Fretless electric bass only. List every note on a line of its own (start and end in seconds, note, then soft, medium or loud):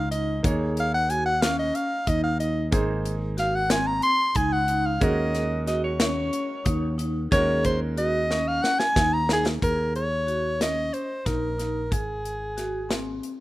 0.00 0.40 C#2 medium
0.44 1.71 D#2 medium
2.07 2.74 D#2 medium
2.72 4.00 G#1 medium
4.36 4.98 C#2 medium
5.01 6.29 D#2 loud
6.66 7.28 D#2 loud
7.32 8.59 D#2 loud
8.96 9.58 D#2 medium
9.62 10.90 D#2 loud
11.26 11.92 A#1 medium
11.92 13.20 G#1 medium